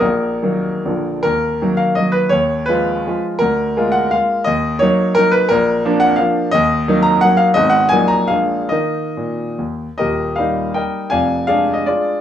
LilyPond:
<<
  \new Staff \with { instrumentName = "Grand piano" } { \time 3/4 \key ees \minor \tempo 4 = 165 << { bes'2~ bes'8 r8 | bes'4. f''8 ees''8 ces''8 | des''4 ces''4. r8 | bes'4. ges''8 f''4 |
ees''4 des''4 bes'8 ces''8 | bes'4. ges''8 f''4 | ees''4. bes''8 ges''8 f''8 | ees''8 ges''8 aes''8 bes''8 f''4 |
ees''2 r4 | \key ees \major ees''4 f''4 g''4 | aes''4 \tuplet 3/2 { f''4 ees''8 } d''4 | } \\ { bes2~ bes8 r8 | r2. | r2. | r2. |
r2. | r2. | r2. | r2. |
r2. | <g' bes'>4 r4 <bes' ees''>4 | <d'' f''>4 <aes' d''>8 r8 <f' aes'>4 | } >> }
  \new Staff \with { instrumentName = "Grand piano" } { \clef bass \time 3/4 \key ees \minor bes,,4 <ees ges bes>4 <bes,, d f bes>4 | ees,4 <ees ges bes>4 <ees ges bes>4 | ees,4 <f aes f'>4 <f aes f'>4 | d,4 <aes bes f'>4 <aes bes f'>4 |
ees,4 <ges bes ees'>4 <ges bes ees'>4 | bes,,4 <f bes d'>4 <f bes d'>4 | ees,4 <ges bes ees'>4 <ges bes ees'>4 | <aes,, aes ces' ees'>4 <bes,, ges bes ees'>4 <bes,, aes bes d'>4 |
<ees bes ees'>4 bes,4 ees,4 | \key ees \major <ees,, ees,>4 <g bes ees'>2 | <f,, f,>4 <aes d'>2 | }
>>